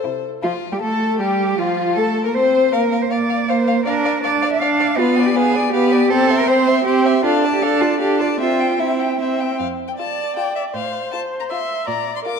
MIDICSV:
0, 0, Header, 1, 5, 480
1, 0, Start_track
1, 0, Key_signature, -1, "major"
1, 0, Tempo, 384615
1, 545, Time_signature, 3, 2, 24, 8
1, 3413, Tempo, 375469
1, 9173, Tempo, 392157
1, 12053, Tempo, 379027
1, 15602, End_track
2, 0, Start_track
2, 0, Title_t, "Violin"
2, 0, Program_c, 0, 40
2, 0, Note_on_c, 0, 72, 46
2, 309, Note_off_c, 0, 72, 0
2, 539, Note_on_c, 0, 65, 58
2, 905, Note_on_c, 0, 67, 46
2, 924, Note_off_c, 0, 65, 0
2, 1011, Note_off_c, 0, 67, 0
2, 1018, Note_on_c, 0, 69, 62
2, 1488, Note_off_c, 0, 69, 0
2, 1499, Note_on_c, 0, 67, 57
2, 1978, Note_on_c, 0, 65, 59
2, 1996, Note_off_c, 0, 67, 0
2, 2459, Note_on_c, 0, 69, 62
2, 2477, Note_off_c, 0, 65, 0
2, 2819, Note_on_c, 0, 70, 52
2, 2838, Note_off_c, 0, 69, 0
2, 2921, Note_off_c, 0, 70, 0
2, 2928, Note_on_c, 0, 72, 59
2, 3394, Note_off_c, 0, 72, 0
2, 3402, Note_on_c, 0, 77, 48
2, 3500, Note_off_c, 0, 77, 0
2, 3662, Note_on_c, 0, 77, 42
2, 3756, Note_off_c, 0, 77, 0
2, 3894, Note_on_c, 0, 77, 49
2, 3990, Note_off_c, 0, 77, 0
2, 4132, Note_on_c, 0, 77, 47
2, 4228, Note_off_c, 0, 77, 0
2, 4384, Note_on_c, 0, 77, 46
2, 4478, Note_off_c, 0, 77, 0
2, 4613, Note_on_c, 0, 77, 46
2, 4709, Note_off_c, 0, 77, 0
2, 4858, Note_on_c, 0, 77, 54
2, 4954, Note_off_c, 0, 77, 0
2, 5097, Note_on_c, 0, 77, 45
2, 5193, Note_off_c, 0, 77, 0
2, 5332, Note_on_c, 0, 77, 56
2, 5430, Note_off_c, 0, 77, 0
2, 5566, Note_on_c, 0, 77, 53
2, 5664, Note_off_c, 0, 77, 0
2, 5814, Note_on_c, 0, 77, 54
2, 5910, Note_off_c, 0, 77, 0
2, 6048, Note_on_c, 0, 77, 50
2, 6144, Note_off_c, 0, 77, 0
2, 6291, Note_on_c, 0, 77, 57
2, 6517, Note_on_c, 0, 80, 53
2, 6536, Note_off_c, 0, 77, 0
2, 6766, Note_on_c, 0, 77, 59
2, 6785, Note_off_c, 0, 80, 0
2, 7003, Note_on_c, 0, 80, 59
2, 7022, Note_off_c, 0, 77, 0
2, 7243, Note_off_c, 0, 80, 0
2, 7252, Note_on_c, 0, 77, 53
2, 7482, Note_on_c, 0, 80, 56
2, 7501, Note_off_c, 0, 77, 0
2, 7705, Note_off_c, 0, 80, 0
2, 7713, Note_on_c, 0, 79, 64
2, 7957, Note_on_c, 0, 84, 58
2, 7976, Note_off_c, 0, 79, 0
2, 8209, Note_on_c, 0, 79, 67
2, 8229, Note_off_c, 0, 84, 0
2, 8448, Note_on_c, 0, 84, 60
2, 8467, Note_off_c, 0, 79, 0
2, 8690, Note_off_c, 0, 84, 0
2, 8701, Note_on_c, 0, 79, 58
2, 8946, Note_on_c, 0, 84, 52
2, 8965, Note_off_c, 0, 79, 0
2, 9176, Note_off_c, 0, 84, 0
2, 9184, Note_on_c, 0, 77, 66
2, 9418, Note_on_c, 0, 81, 55
2, 9437, Note_off_c, 0, 77, 0
2, 9638, Note_on_c, 0, 77, 61
2, 9656, Note_off_c, 0, 81, 0
2, 9879, Note_on_c, 0, 81, 53
2, 9897, Note_off_c, 0, 77, 0
2, 10086, Note_off_c, 0, 81, 0
2, 10094, Note_on_c, 0, 77, 49
2, 10340, Note_on_c, 0, 81, 45
2, 10359, Note_off_c, 0, 77, 0
2, 10589, Note_off_c, 0, 81, 0
2, 10600, Note_on_c, 0, 79, 52
2, 10839, Note_on_c, 0, 76, 45
2, 10857, Note_off_c, 0, 79, 0
2, 11080, Note_on_c, 0, 79, 51
2, 11098, Note_off_c, 0, 76, 0
2, 11331, Note_on_c, 0, 76, 44
2, 11349, Note_off_c, 0, 79, 0
2, 11548, Note_off_c, 0, 76, 0
2, 11555, Note_on_c, 0, 79, 43
2, 11815, Note_on_c, 0, 76, 40
2, 11833, Note_off_c, 0, 79, 0
2, 12043, Note_off_c, 0, 76, 0
2, 12051, Note_on_c, 0, 77, 53
2, 12152, Note_off_c, 0, 77, 0
2, 12413, Note_on_c, 0, 79, 45
2, 12463, Note_off_c, 0, 79, 0
2, 12539, Note_on_c, 0, 81, 58
2, 13014, Note_off_c, 0, 81, 0
2, 13028, Note_on_c, 0, 79, 51
2, 13262, Note_off_c, 0, 79, 0
2, 13273, Note_on_c, 0, 76, 45
2, 13367, Note_off_c, 0, 76, 0
2, 13513, Note_on_c, 0, 77, 52
2, 13978, Note_off_c, 0, 77, 0
2, 13988, Note_on_c, 0, 81, 54
2, 14090, Note_off_c, 0, 81, 0
2, 14340, Note_on_c, 0, 82, 52
2, 14389, Note_off_c, 0, 82, 0
2, 14468, Note_on_c, 0, 84, 51
2, 14934, Note_off_c, 0, 84, 0
2, 14942, Note_on_c, 0, 82, 57
2, 15291, Note_off_c, 0, 82, 0
2, 15305, Note_on_c, 0, 84, 46
2, 15351, Note_off_c, 0, 84, 0
2, 15430, Note_on_c, 0, 86, 64
2, 15602, Note_off_c, 0, 86, 0
2, 15602, End_track
3, 0, Start_track
3, 0, Title_t, "Violin"
3, 0, Program_c, 1, 40
3, 50, Note_on_c, 1, 64, 39
3, 419, Note_off_c, 1, 64, 0
3, 531, Note_on_c, 1, 65, 55
3, 631, Note_off_c, 1, 65, 0
3, 902, Note_on_c, 1, 67, 51
3, 1012, Note_off_c, 1, 67, 0
3, 1020, Note_on_c, 1, 69, 55
3, 1503, Note_on_c, 1, 67, 57
3, 1522, Note_off_c, 1, 69, 0
3, 1975, Note_off_c, 1, 67, 0
3, 1983, Note_on_c, 1, 65, 56
3, 2463, Note_on_c, 1, 69, 57
3, 2482, Note_off_c, 1, 65, 0
3, 2799, Note_off_c, 1, 69, 0
3, 2806, Note_on_c, 1, 70, 51
3, 2856, Note_off_c, 1, 70, 0
3, 2933, Note_on_c, 1, 72, 66
3, 3403, Note_off_c, 1, 72, 0
3, 3409, Note_on_c, 1, 77, 47
3, 3507, Note_off_c, 1, 77, 0
3, 3644, Note_on_c, 1, 77, 43
3, 3742, Note_off_c, 1, 77, 0
3, 3881, Note_on_c, 1, 77, 47
3, 3979, Note_off_c, 1, 77, 0
3, 4129, Note_on_c, 1, 77, 44
3, 4226, Note_off_c, 1, 77, 0
3, 4366, Note_on_c, 1, 77, 49
3, 4463, Note_off_c, 1, 77, 0
3, 4609, Note_on_c, 1, 77, 42
3, 4706, Note_off_c, 1, 77, 0
3, 4842, Note_on_c, 1, 74, 50
3, 4941, Note_off_c, 1, 74, 0
3, 5084, Note_on_c, 1, 74, 49
3, 5183, Note_off_c, 1, 74, 0
3, 5333, Note_on_c, 1, 74, 53
3, 5431, Note_off_c, 1, 74, 0
3, 5574, Note_on_c, 1, 74, 52
3, 5671, Note_off_c, 1, 74, 0
3, 5811, Note_on_c, 1, 74, 58
3, 5907, Note_off_c, 1, 74, 0
3, 6053, Note_on_c, 1, 74, 48
3, 6148, Note_off_c, 1, 74, 0
3, 6305, Note_on_c, 1, 71, 53
3, 6550, Note_on_c, 1, 74, 53
3, 6569, Note_off_c, 1, 71, 0
3, 6772, Note_on_c, 1, 71, 56
3, 6791, Note_off_c, 1, 74, 0
3, 7018, Note_on_c, 1, 74, 55
3, 7037, Note_off_c, 1, 71, 0
3, 7242, Note_off_c, 1, 74, 0
3, 7250, Note_on_c, 1, 71, 58
3, 7485, Note_on_c, 1, 74, 52
3, 7504, Note_off_c, 1, 71, 0
3, 7718, Note_off_c, 1, 74, 0
3, 7725, Note_on_c, 1, 72, 62
3, 7969, Note_on_c, 1, 76, 57
3, 7988, Note_off_c, 1, 72, 0
3, 8201, Note_on_c, 1, 72, 55
3, 8221, Note_off_c, 1, 76, 0
3, 8455, Note_on_c, 1, 76, 56
3, 8474, Note_off_c, 1, 72, 0
3, 8683, Note_off_c, 1, 76, 0
3, 8691, Note_on_c, 1, 72, 60
3, 8933, Note_on_c, 1, 76, 55
3, 8952, Note_off_c, 1, 72, 0
3, 9175, Note_off_c, 1, 76, 0
3, 9185, Note_on_c, 1, 69, 64
3, 9430, Note_on_c, 1, 74, 56
3, 9449, Note_off_c, 1, 69, 0
3, 9654, Note_on_c, 1, 69, 53
3, 9672, Note_off_c, 1, 74, 0
3, 9891, Note_on_c, 1, 74, 49
3, 9909, Note_off_c, 1, 69, 0
3, 10114, Note_off_c, 1, 74, 0
3, 10121, Note_on_c, 1, 69, 55
3, 10361, Note_on_c, 1, 74, 49
3, 10379, Note_off_c, 1, 69, 0
3, 10585, Note_off_c, 1, 74, 0
3, 10592, Note_on_c, 1, 76, 51
3, 10840, Note_on_c, 1, 79, 45
3, 10858, Note_off_c, 1, 76, 0
3, 11078, Note_on_c, 1, 76, 45
3, 11096, Note_off_c, 1, 79, 0
3, 11328, Note_on_c, 1, 79, 43
3, 11347, Note_off_c, 1, 76, 0
3, 11567, Note_off_c, 1, 79, 0
3, 11574, Note_on_c, 1, 76, 44
3, 11816, Note_on_c, 1, 79, 40
3, 11834, Note_off_c, 1, 76, 0
3, 12056, Note_off_c, 1, 79, 0
3, 12552, Note_on_c, 1, 65, 32
3, 12654, Note_off_c, 1, 65, 0
3, 13030, Note_on_c, 1, 65, 36
3, 13132, Note_off_c, 1, 65, 0
3, 13993, Note_on_c, 1, 65, 34
3, 14094, Note_off_c, 1, 65, 0
3, 14474, Note_on_c, 1, 65, 36
3, 14575, Note_off_c, 1, 65, 0
3, 15421, Note_on_c, 1, 65, 35
3, 15522, Note_off_c, 1, 65, 0
3, 15602, End_track
4, 0, Start_track
4, 0, Title_t, "Cello"
4, 0, Program_c, 2, 42
4, 52, Note_on_c, 2, 48, 42
4, 442, Note_off_c, 2, 48, 0
4, 539, Note_on_c, 2, 65, 60
4, 638, Note_off_c, 2, 65, 0
4, 903, Note_on_c, 2, 67, 52
4, 951, Note_off_c, 2, 67, 0
4, 1029, Note_on_c, 2, 69, 60
4, 1490, Note_off_c, 2, 69, 0
4, 1497, Note_on_c, 2, 67, 61
4, 1978, Note_on_c, 2, 65, 62
4, 1997, Note_off_c, 2, 67, 0
4, 2440, Note_off_c, 2, 65, 0
4, 2448, Note_on_c, 2, 69, 61
4, 2796, Note_off_c, 2, 69, 0
4, 2803, Note_on_c, 2, 70, 59
4, 2927, Note_on_c, 2, 72, 64
4, 2946, Note_off_c, 2, 70, 0
4, 3410, Note_on_c, 2, 70, 69
4, 3429, Note_off_c, 2, 72, 0
4, 3776, Note_on_c, 2, 72, 64
4, 3795, Note_off_c, 2, 70, 0
4, 3899, Note_on_c, 2, 74, 72
4, 3918, Note_off_c, 2, 72, 0
4, 4381, Note_on_c, 2, 72, 70
4, 4400, Note_off_c, 2, 74, 0
4, 4844, Note_off_c, 2, 72, 0
4, 4851, Note_on_c, 2, 70, 78
4, 5326, Note_off_c, 2, 70, 0
4, 5331, Note_on_c, 2, 74, 80
4, 5689, Note_off_c, 2, 74, 0
4, 5694, Note_on_c, 2, 76, 79
4, 5807, Note_on_c, 2, 77, 86
4, 5826, Note_off_c, 2, 76, 0
4, 6281, Note_on_c, 2, 65, 78
4, 6300, Note_off_c, 2, 77, 0
4, 6638, Note_on_c, 2, 67, 76
4, 6657, Note_off_c, 2, 65, 0
4, 6746, Note_off_c, 2, 67, 0
4, 6754, Note_on_c, 2, 68, 87
4, 7228, Note_off_c, 2, 68, 0
4, 7237, Note_on_c, 2, 67, 85
4, 7714, Note_on_c, 2, 69, 91
4, 7733, Note_off_c, 2, 67, 0
4, 8084, Note_on_c, 2, 70, 81
4, 8103, Note_off_c, 2, 69, 0
4, 8192, Note_on_c, 2, 72, 89
4, 8212, Note_off_c, 2, 70, 0
4, 8664, Note_off_c, 2, 72, 0
4, 8671, Note_on_c, 2, 67, 82
4, 9157, Note_off_c, 2, 67, 0
4, 9163, Note_on_c, 2, 65, 84
4, 9262, Note_off_c, 2, 65, 0
4, 9525, Note_on_c, 2, 67, 73
4, 9638, Note_on_c, 2, 69, 83
4, 9657, Note_off_c, 2, 67, 0
4, 9873, Note_on_c, 2, 65, 75
4, 9891, Note_off_c, 2, 69, 0
4, 10098, Note_off_c, 2, 65, 0
4, 10105, Note_on_c, 2, 67, 70
4, 10332, Note_off_c, 2, 67, 0
4, 10339, Note_on_c, 2, 65, 69
4, 10437, Note_off_c, 2, 65, 0
4, 10592, Note_on_c, 2, 65, 75
4, 11076, Note_on_c, 2, 64, 58
4, 11095, Note_off_c, 2, 65, 0
4, 11810, Note_off_c, 2, 64, 0
4, 12056, Note_on_c, 2, 41, 45
4, 12441, Note_off_c, 2, 41, 0
4, 13507, Note_on_c, 2, 45, 50
4, 13884, Note_off_c, 2, 45, 0
4, 14947, Note_on_c, 2, 46, 51
4, 15320, Note_off_c, 2, 46, 0
4, 15602, End_track
5, 0, Start_track
5, 0, Title_t, "Viola"
5, 0, Program_c, 3, 41
5, 0, Note_on_c, 3, 69, 45
5, 298, Note_off_c, 3, 69, 0
5, 543, Note_on_c, 3, 53, 53
5, 643, Note_off_c, 3, 53, 0
5, 900, Note_on_c, 3, 55, 50
5, 949, Note_off_c, 3, 55, 0
5, 1020, Note_on_c, 3, 57, 58
5, 1486, Note_on_c, 3, 55, 61
5, 1505, Note_off_c, 3, 57, 0
5, 1964, Note_off_c, 3, 55, 0
5, 1972, Note_on_c, 3, 53, 59
5, 2456, Note_on_c, 3, 57, 54
5, 2474, Note_off_c, 3, 53, 0
5, 2813, Note_on_c, 3, 58, 57
5, 2832, Note_off_c, 3, 57, 0
5, 2947, Note_on_c, 3, 60, 66
5, 2965, Note_off_c, 3, 58, 0
5, 3411, Note_off_c, 3, 60, 0
5, 3419, Note_on_c, 3, 58, 54
5, 3841, Note_off_c, 3, 58, 0
5, 3898, Note_on_c, 3, 58, 55
5, 4318, Note_off_c, 3, 58, 0
5, 4370, Note_on_c, 3, 58, 64
5, 4795, Note_off_c, 3, 58, 0
5, 4863, Note_on_c, 3, 62, 63
5, 5284, Note_off_c, 3, 62, 0
5, 5336, Note_on_c, 3, 62, 61
5, 5762, Note_off_c, 3, 62, 0
5, 5827, Note_on_c, 3, 62, 72
5, 6240, Note_off_c, 3, 62, 0
5, 6296, Note_on_c, 3, 59, 74
5, 6711, Note_off_c, 3, 59, 0
5, 6773, Note_on_c, 3, 59, 71
5, 7191, Note_off_c, 3, 59, 0
5, 7245, Note_on_c, 3, 59, 76
5, 7665, Note_off_c, 3, 59, 0
5, 7720, Note_on_c, 3, 60, 75
5, 8146, Note_off_c, 3, 60, 0
5, 8201, Note_on_c, 3, 60, 70
5, 8630, Note_off_c, 3, 60, 0
5, 8683, Note_on_c, 3, 60, 78
5, 9115, Note_off_c, 3, 60, 0
5, 9173, Note_on_c, 3, 62, 71
5, 9586, Note_off_c, 3, 62, 0
5, 9643, Note_on_c, 3, 62, 68
5, 10057, Note_off_c, 3, 62, 0
5, 10118, Note_on_c, 3, 62, 66
5, 10539, Note_off_c, 3, 62, 0
5, 10594, Note_on_c, 3, 60, 57
5, 11027, Note_off_c, 3, 60, 0
5, 11090, Note_on_c, 3, 60, 55
5, 11516, Note_off_c, 3, 60, 0
5, 11572, Note_on_c, 3, 60, 58
5, 12000, Note_off_c, 3, 60, 0
5, 12539, Note_on_c, 3, 74, 51
5, 13500, Note_on_c, 3, 72, 42
5, 13519, Note_off_c, 3, 74, 0
5, 14464, Note_on_c, 3, 76, 53
5, 14483, Note_off_c, 3, 72, 0
5, 14941, Note_on_c, 3, 74, 41
5, 14960, Note_off_c, 3, 76, 0
5, 15409, Note_off_c, 3, 74, 0
5, 15417, Note_on_c, 3, 70, 42
5, 15602, Note_off_c, 3, 70, 0
5, 15602, End_track
0, 0, End_of_file